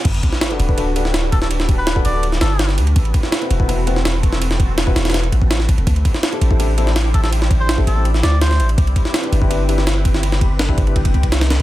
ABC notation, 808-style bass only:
X:1
M:4/4
L:1/16
Q:1/4=165
K:G
V:1 name="808-style bass" clef=bass
G,,,2 z4 D,,,8- D,,,2- | D,,,6 D,,,4 G,,,4 D,,2 | A,,,2 z4 E,,,8- E,,,2- | E,,,6 E,,,4 A,,,4- A,,, E,,, |
D,,2 z4 A,,,8- A,,,2- | A,,,6 A,,,4 D,,4 A,,,2 | C,,2 z4 G,,,8- G,,,2- | G,,,6 G,,,4 C,,4- C,, z |]